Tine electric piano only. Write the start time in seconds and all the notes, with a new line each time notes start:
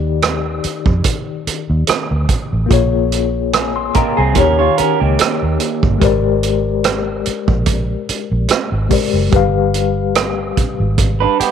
Already playing: D#3 D#4 G4 D5
2.66 A#3 F4
2.71 G#4 C#5
3.53 G#5
3.76 C6
3.96 A#5
4.18 G#5
4.33 D#3 D#4
4.37 G4 C#5
5.98 G#3 G4 A#4
6.03 C5 D5
8.89 G#3 G4 A#4 C5 D5
9.30 G3 G4
9.34 B4 F5